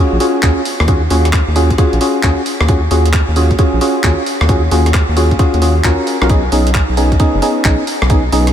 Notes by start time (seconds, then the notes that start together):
Already playing: C#4 F4 F#4 G#4
0.13 A#1
0.20 C#4 F4 F#4 G#4, open hi-hat
0.43 D#2 C#4 F4 F#4 G#4, kick, clap, closed hi-hat
0.65 open hi-hat
0.80 D#2, cross-stick
0.88 C#4 F4 F#4 G#4, kick, closed hi-hat
1.10 D#2 C#4 F4 F#4 G#4, open hi-hat
1.25 cross-stick, closed hi-hat
1.33 kick, cross-stick, clap, closed hi-hat
1.48 D#2
1.56 C#4 F4 F#4 G#4, open hi-hat
1.70 kick, closed hi-hat
1.78 C#4 F4 F#4 G#4, kick, closed hi-hat
1.93 A#1, closed hi-hat
2.01 C#4 F4 F#4 G#4, open hi-hat
2.23 D#2 C#4 F4 F#4 G#4, kick, clap, closed hi-hat
2.46 open hi-hat
2.61 D#2, cross-stick
2.68 C#4 F4 F#4 G#4, kick, closed hi-hat
2.91 D#2 C#4 F4 F#4 G#4, open hi-hat
3.06 closed hi-hat
3.13 kick, clap, closed hi-hat
3.28 D#2
3.36 C#4 F4 F#4 G#4, open hi-hat
3.51 kick, closed hi-hat
3.59 C#4 F4 F#4 G#4, kick, closed hi-hat
3.73 A#1
3.81 C#4 F4 F#4 G#4, open hi-hat
4.04 D#2 C#4 F4 F#4 G#4, kick, clap, closed hi-hat
4.26 open hi-hat
4.41 D#2, cross-stick
4.49 C#4 F4 F#4 G#4, kick, closed hi-hat
4.71 D#2 C#4 F4 F#4 G#4, open hi-hat
4.86 cross-stick, closed hi-hat
4.94 kick, cross-stick, clap, closed hi-hat
5.09 D#2
5.17 C#4 F4 F#4 G#4, open hi-hat
5.31 kick, closed hi-hat
5.39 C#4 F4 F#4 G#4, kick, closed hi-hat
5.54 D#2, closed hi-hat
5.62 C#4 F4 F#4 G#4, open hi-hat
5.84 D#2 C#4 F4 F#4 A#4, kick, clap, closed hi-hat
6.07 open hi-hat
6.22 B1 C#4 F4 F#4 A#4, cross-stick
6.29 B3 C#4 D#4 G#4, kick, closed hi-hat
6.52 B1 B3 C#4 D#4 G#4, open hi-hat
6.67 closed hi-hat
6.75 kick, clap, closed hi-hat
6.89 B1
6.97 B3 C#4 D#4 G#4, open hi-hat
7.12 kick, closed hi-hat
7.20 B3 C#4 D#4 G#4, kick, closed hi-hat
7.35 F#1
7.42 B3 C#4 D#4 G#4, open hi-hat
7.65 B1 B3 C#4 D#4 G#4, kick, clap, closed hi-hat
7.87 open hi-hat
8.02 B1, cross-stick
8.10 B3 C#4 D#4 G#4, kick, closed hi-hat
8.32 B1 B3 C#4 D#4 G#4, open hi-hat
8.47 cross-stick, closed hi-hat